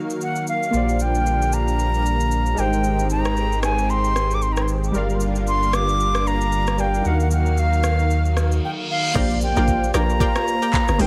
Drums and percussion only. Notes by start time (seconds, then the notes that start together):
0.10 shaker
0.21 shaker
0.36 shaker
0.47 shaker
0.63 shaker
0.74 shaker
0.89 shaker
1.00 shaker
1.15 shaker
1.26 shaker
1.42 shaker
1.53 shaker
1.68 shaker
1.79 shaker
1.94 shaker
2.06 shaker
2.20 shaker
2.31 shaker
2.46 shaker
2.58 shaker
2.73 shaker
2.84 shaker
2.99 shaker
3.10 shaker
3.25 cross-stick, shaker
3.37 shaker
3.52 shaker
3.63 cross-stick, shaker
3.78 shaker
3.90 shaker
4.04 shaker
4.16 cross-stick, shaker
4.31 shaker
4.42 shaker
4.57 cross-stick, shaker
4.68 shaker
4.84 shaker
4.94 shaker
5.10 shaker
5.20 shaker
5.36 shaker
5.47 shaker
5.63 shaker
5.73 cross-stick, shaker
5.89 shaker
6.00 shaker
6.15 cross-stick, shaker
6.27 shaker
6.41 shaker
6.52 shaker
6.67 cross-stick, shaker
6.78 shaker
6.94 shaker
7.05 shaker
7.20 shaker
7.31 shaker
7.46 shaker
7.57 shaker
7.73 shaker
7.84 cross-stick, shaker
7.99 shaker
8.11 shaker
8.25 shaker
8.37 cross-stick, shaker
8.52 shaker
9.15 kick, crash, shaker
9.30 shaker
9.41 shaker
9.56 shaker
9.68 kick, shaker
9.84 shaker
9.94 cross-stick, shaker
10.10 shaker
10.20 kick, shaker
10.36 cross-stick, shaker
10.48 shaker
10.62 shaker
10.73 kick, clap, shaker
10.88 cross-stick, shaker
10.99 open hi-hat, shaker